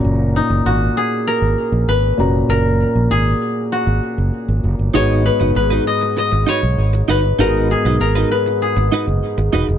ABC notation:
X:1
M:4/4
L:1/16
Q:1/4=98
K:F#mix
V:1 name="Koto"
z2 D2 F2 G2 A4 B4 | A4 G4 F6 z2 | c2 B2 B2 d2 d2 c4 B2 | A2 G2 A2 B2 G6 z2 |]
V:2 name="Clean electric guitar"
z16 | z16 | [DFB]2 z [DFB] z [DFB] z4 [DFB] z3 [DFB] z | [DFB]2 z [DFB] z [DFB] z4 [DFB] z3 [DFB] z |]
V:3 name="Grand piano"
[A,,CFa]12- [A,,CFa]2 [A,,CFa]2- | [A,,CFa]12- [A,,CFa]2 z2 | [B,DFG]16 | [B,DFGA]16 |]
V:4 name="Grand piano" clef=bass
z16 | z16 | G,,6 z8 z2 | G,,6 z8 z2 |]
V:5 name="Fretless electric bass" clef=bass
F,,,3 F,,, G,,,2 z3 G,,, z A,,, G,,,2 ^E,,,2 | F,,,3 A,,, G,,,2 z3 G,,, z F,,, z G,,, F,,, =G,,, | G,,,3 F,,, G,,,2 z3 G,,, z B,,, G,,,2 =G,,,2 | G,,,3 B,,, G,,,2 z3 G,,, z F,,, z G,,, E,,, ^E,,, |]